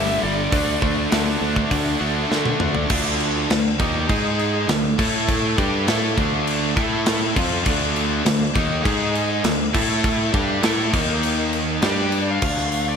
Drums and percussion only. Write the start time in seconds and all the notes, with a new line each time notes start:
0.52 kick, open hi-hat
0.82 kick
1.12 snare, open hi-hat
1.56 kick
1.71 kick, open hi-hat
2.32 snare
2.45 high tom
2.60 mid tom
2.75 floor tom
2.90 kick, crash
3.20 crash
3.50 snare, crash
3.80 kick, crash
4.09 kick, crash
4.39 crash
4.69 snare, crash
4.99 kick, crash
5.29 kick, crash
5.58 kick, crash
5.88 snare, crash
6.18 kick, crash
6.47 crash
6.77 kick, crash
7.06 snare, crash
7.36 kick, crash
7.66 kick, crash
7.96 crash
8.26 snare, crash
8.56 kick, crash
8.85 kick, crash
9.15 crash
9.44 snare, crash
9.74 kick, crash
10.04 kick, crash
10.34 kick, crash
10.63 snare, crash
10.94 kick, crash
11.23 crash
11.53 crash
11.82 snare, crash
12.12 crash
12.42 kick, crash
12.58 snare
12.72 open hi-hat